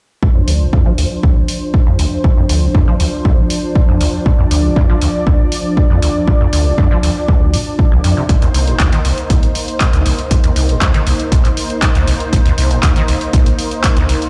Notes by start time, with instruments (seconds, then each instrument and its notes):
0.22 acid bass D2, analog synth pad F3 D4 C5, kick
0.35 acid bass F2
0.48 acid bass D2, open hi-hat
0.61 acid bass C2
0.73 acid bass F2, kick
0.86 acid bass F3
0.98 acid bass D2, open hi-hat
1.23 acid bass D2, kick
1.48 open hi-hat
1.74 kick
1.87 acid bass F2
1.99 acid bass D2, open hi-hat
2.24 acid bass D2, kick
2.37 acid bass F2
2.49 acid bass D2, open hi-hat
2.63 acid bass C2
2.75 acid bass F2, kick
2.88 acid bass F3
3.00 acid bass D2, open hi-hat
3.25 acid bass D2, kick
3.50 open hi-hat
3.75 kick
3.89 acid bass F2
4.01 acid bass D2, open hi-hat
4.26 acid bass D2, analog synth pad D5, kick
4.39 acid bass F2
4.51 acid bass D2, open hi-hat
4.64 acid bass C2
4.76 acid bass F2, kick
4.89 acid bass F3
5.01 acid bass D2, open hi-hat
5.27 acid bass D2, kick
5.52 open hi-hat
5.77 kick
5.90 acid bass F2
6.02 acid bass D2, open hi-hat
6.28 acid bass D2, kick
6.41 acid bass F2
6.53 acid bass D2, open hi-hat
6.66 acid bass C2
6.78 acid bass F2, kick
6.91 acid bass F3
7.03 acid bass D2, open hi-hat
7.28 acid bass D2, kick
7.54 acid bass C3, open hi-hat
7.79 kick
7.92 acid bass C2
8.04 acid bass F2, open hi-hat
8.17 acid bass C3
8.29 acid bass C2, analog synth pad A#3 D#4 C5, kick, closed hi-hat
8.42 acid bass D#2, closed hi-hat
8.54 acid bass C2, open hi-hat
8.67 acid bass A#1, closed hi-hat
8.80 acid bass D2, kick, clap, closed hi-hat
8.92 acid bass D#3, closed hi-hat
9.05 acid bass C2, open hi-hat
9.18 closed hi-hat
9.30 acid bass C2, kick, closed hi-hat
9.43 closed hi-hat
9.55 open hi-hat
9.68 closed hi-hat
9.80 kick, clap, closed hi-hat
9.93 acid bass D2, closed hi-hat
10.06 acid bass C2, open hi-hat
10.19 closed hi-hat
10.31 acid bass C2, kick, closed hi-hat
10.44 acid bass D#2, closed hi-hat
10.56 acid bass C2, open hi-hat
10.69 acid bass A#1, closed hi-hat
10.81 acid bass D2, kick, clap, closed hi-hat
10.94 acid bass D#3, closed hi-hat
11.07 acid bass C2, open hi-hat
11.20 closed hi-hat
11.32 acid bass C2, kick, closed hi-hat
11.45 clap, closed hi-hat
11.57 open hi-hat
11.70 closed hi-hat
11.82 kick, clap, closed hi-hat
11.95 acid bass D2, closed hi-hat
12.07 acid bass C2, open hi-hat
12.20 closed hi-hat
12.33 acid bass C2, kick, closed hi-hat
12.46 acid bass D#2, closed hi-hat
12.58 acid bass C2, open hi-hat
12.71 acid bass A#1, closed hi-hat
12.83 acid bass D2, kick, clap, closed hi-hat
12.96 acid bass D#3, closed hi-hat
13.08 acid bass C2, open hi-hat
13.21 closed hi-hat
13.33 acid bass C2, kick, closed hi-hat
13.46 closed hi-hat
13.59 open hi-hat
13.71 closed hi-hat
13.84 kick, clap, closed hi-hat
13.97 acid bass D2, closed hi-hat
14.09 acid bass C2, open hi-hat
14.22 closed hi-hat